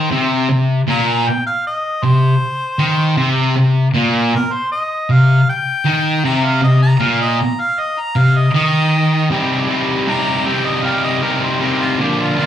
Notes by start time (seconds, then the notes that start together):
Already playing: D#3 C5
0.11 C3
0.50 C3
0.88 A#2 A#5
1.28 G5
1.46 F5
1.67 D#5
2.03 C3 C5
2.79 D#3
3.17 C3
3.56 C3
3.94 A#2
4.35 A#4
4.53 C5
4.72 D#5
5.10 C3 F5
5.50 G5
5.85 D#3
6.25 C3 A#5
6.44 F5
6.62 C3 D#5
6.83 A#5
7.00 A#2 F5
7.22 D#5
7.41 A#5
7.61 F5
7.80 D#5
8.00 A#5
8.16 C3 F5
8.37 D#5
8.54 D#3 D#5
9.30 C3 G3 C4 D#4 G4
9.68 C3 G3 C4 D#4 G4
10.07 C3 G3 C4 D#4 G4 A#5
10.46 C3 G3 C4 D#4 G4 G5
10.67 D#5
10.83 C3 G3 C4 D#4 G4 F5
11.04 D#5
11.21 C3 G3 C4 D#4 G4 A#4
11.43 C5
11.60 C3 G3 C4 D#4 G4 A#4
11.80 F4
11.99 A#2 D3 F3 A#3 D4 G4
12.20 F4
12.37 A#2 D3 F3 A#3 D4 F4